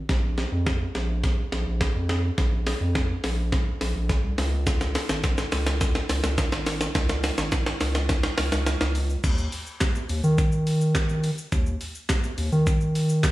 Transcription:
0.09 A#1, kick, snare, closed hi-hat
0.38 snare, closed hi-hat
0.52 F2
0.66 kick, snare, closed hi-hat
0.95 A#1, snare, closed hi-hat
1.24 kick, snare, closed hi-hat
1.52 A#1, snare, closed hi-hat
1.66 A#1
1.81 kick, snare, closed hi-hat
1.95 F2
2.09 snare, closed hi-hat
2.38 A#1, kick, snare, closed hi-hat
2.66 snare, open hi-hat
2.81 F2
2.95 kick, snare, closed hi-hat
3.24 A#1, snare, open hi-hat
3.52 kick, snare, closed hi-hat
3.81 A#1, snare, open hi-hat
3.95 A#1
4.09 kick, snare, closed hi-hat
4.24 C2
4.38 C#2, snare, open hi-hat
4.67 kick, snare, closed hi-hat, shaker
4.81 snare, shaker
4.95 snare, open hi-hat, shaker
5.09 G#1, snare, shaker
5.24 kick, snare, closed hi-hat, shaker
5.38 snare, shaker
5.52 C#2, snare, open hi-hat, shaker
5.66 snare, shaker
5.81 kick, snare, closed hi-hat, shaker
5.95 snare, shaker
6.09 C#2, snare, open hi-hat, shaker
6.24 C#2, snare, shaker
6.38 kick, snare, closed hi-hat, shaker
6.52 G#1, snare, shaker
6.66 snare, open hi-hat, shaker
6.81 snare, shaker
6.95 C#2, kick, snare, closed hi-hat, shaker
7.09 snare, shaker
7.24 snare, open hi-hat, shaker
7.38 G#1, snare, shaker
7.52 kick, snare, closed hi-hat, shaker
7.66 snare, shaker
7.81 C#2, snare, open hi-hat, shaker
7.95 snare, shaker
8.09 kick, snare, closed hi-hat, shaker
8.23 snare, shaker
8.38 C#2, snare, open hi-hat, shaker
8.52 C#2, snare, shaker
8.66 snare, closed hi-hat, shaker
8.81 C#2, snare, shaker
8.95 open hi-hat, shaker
9.10 shaker
9.24 D#2, kick, closed hi-hat, crash, shaker
9.38 shaker
9.52 open hi-hat, shaker
9.67 shaker
9.81 kick, snare, clap, closed hi-hat, shaker
9.95 shaker
10.09 D#2, open hi-hat, shaker
10.24 D#3, shaker
10.38 kick, closed hi-hat, shaker
10.52 shaker
10.67 open hi-hat, shaker
10.81 shaker
10.95 kick, snare, clap, closed hi-hat, shaker
11.09 shaker
11.24 open hi-hat, shaker
11.38 shaker
11.52 D#2, kick, closed hi-hat, shaker
11.66 shaker
11.81 open hi-hat, shaker
11.95 shaker
12.09 kick, snare, clap, closed hi-hat, shaker
12.24 shaker
12.38 D#2, open hi-hat, shaker
12.52 D#3, shaker
12.67 kick, closed hi-hat, shaker
12.81 shaker
12.95 open hi-hat, shaker
13.09 shaker
13.23 kick, snare, clap, closed hi-hat, shaker

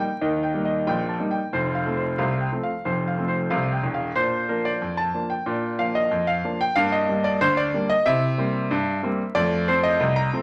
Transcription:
0.00 G5
0.21 D#2 D#3 D#5
0.43 G5
0.54 G3 A#3 D#4
0.65 D#5
0.87 A#1 A#2 G5
1.09 A5
1.20 G3 A#3 D#4
1.31 G5
1.53 F1 F2 C5
1.75 F5
1.86 F3 A3 C4
1.97 C5
2.18 C2 C3 F5
2.41 G5
2.52 F3 A3 C4
2.63 F5
2.85 F1 F2 C5
3.08 F5
3.18 F3 A3 C4
3.28 C5
3.50 C2 C3 F5
3.73 G5
3.83 E1 E2
3.94 F5
4.16 A#2 D4 C5
4.49 F3 A#3 D4 A#4
4.65 D5
4.81 F2
4.97 A5
5.14 F3 A#3 D4
5.30 G5
5.46 A#2 D4
5.79 F3 A#3 D4 F5
5.95 D#5
6.11 F2
6.27 F5
6.44 F3 A#3 D4
6.61 G5
6.76 G2 A#3 F5
6.92 D#5
7.09 G3 A#3 D4
7.24 D5
7.41 D2 C5
7.57 D5
7.74 G3 A#3 D4
7.90 D#5
8.06 C3 E4 E5
8.38 G3 A#3 C4
8.71 G2
9.03 G3 A#3 C4
9.35 F2 A3 D5
9.68 F3 A3 C4 C5
9.83 D#5
10.00 C2
10.16 A#5
10.33 F3 A3 C4

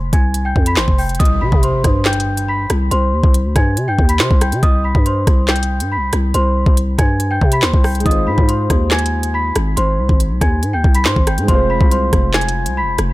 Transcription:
Already playing: F1
0.13 C2 G#5 G#6, kick, closed hi-hat
0.34 closed hi-hat
0.45 G5 G6
0.56 F2, kick
0.66 B5 B6, closed hi-hat
0.77 G#1 C5, snare, clap
0.88 F1, kick
0.98 G5 G6, open hi-hat
1.09 closed hi-hat
1.15 closed hi-hat
1.20 C2 D#5 D#6, kick, closed hi-hat, impact
1.25 closed hi-hat
1.41 C3 B5 B6
1.52 C3, kick
1.63 C5 C6, closed hi-hat
1.84 G2, kick, cross-stick, closed hi-hat
2.05 G5 G6, snare, clap, closed hi-hat
2.13 closed hi-hat
2.20 closed hi-hat
2.37 closed hi-hat
2.48 B5 B6
2.70 C2, cross-stick, closed hi-hat
2.91 C2 C5 C6, closed hi-hat
3.13 D#2
3.24 C2, kick
3.34 closed hi-hat
3.45 D2
3.56 G2 G#5 G#6, kick, cross-stick, closed hi-hat
3.77 C3, closed hi-hat
3.88 G2 G5 G6
3.99 D#2, kick
4.09 B5 B6, closed hi-hat
4.20 C3 C5 C6, snare, clap
4.31 C2, kick
4.41 G5 G6, cross-stick, closed hi-hat
4.52 C3, closed hi-hat
4.63 C2 D#5 D#6, kick, closed hi-hat
4.84 B5 B6
4.95 G2, kick
5.06 C5 C6, closed hi-hat
5.27 C2, kick, cross-stick, closed hi-hat
5.48 G5 G6, snare, clap, closed hi-hat
5.56 closed hi-hat
5.63 closed hi-hat
5.80 G2, closed hi-hat
5.92 B5 B6
5.97 C2
6.13 C2, cross-stick, closed hi-hat
6.34 C2 C5 C6, closed hi-hat
6.66 C2, kick
6.77 closed hi-hat
6.98 G2 G#5 G#6, kick, cross-stick, closed hi-hat
7.20 closed hi-hat
7.31 G5 G6
7.41 C3, kick
7.52 B5 B6, closed hi-hat
7.62 D#2 C5 C6, snare, clap
7.74 C2, kick
7.84 G5 G6, cross-stick, open hi-hat
7.95 closed hi-hat
8.00 G#3 D#4, closed hi-hat
8.06 G#1 F4 D#5 D#6, kick, closed hi-hat
8.11 C5, closed hi-hat
8.27 G#2 B5 B6
8.38 G#2, kick
8.49 C5 C6, closed hi-hat
8.70 D#2, kick, cross-stick, closed hi-hat
8.91 G#5 G#6, snare, clap, closed hi-hat
8.99 closed hi-hat
9.06 closed hi-hat
9.23 closed hi-hat
9.34 B5 B6
9.56 G#1, cross-stick, closed hi-hat
9.77 G#1 C5 C6, closed hi-hat
9.99 C2
10.09 G#1, kick
10.20 closed hi-hat
10.31 B1
10.41 D#2 G#5 G#6, kick, cross-stick, closed hi-hat
10.63 G#2, closed hi-hat
10.73 D#2 G5 G6
10.84 C2, kick
10.95 B5 B6, closed hi-hat
11.05 G#2 C5 C6, snare, clap
11.16 G#1, kick
11.27 G5 G6, cross-stick, closed hi-hat
11.38 G#2, closed hi-hat
11.43 G#3 C4
11.48 F1 F4 C5 C6, kick, closed hi-hat
11.54 C5
11.70 B5 B6
11.81 C2, kick
11.91 C5 C6, closed hi-hat
12.13 F1, kick, cross-stick, closed hi-hat
12.34 G#5 G#6, snare, clap, closed hi-hat
12.41 closed hi-hat
12.49 closed hi-hat
12.66 C2, closed hi-hat
12.77 B5 B6
12.82 F1
12.98 F1, cross-stick, closed hi-hat

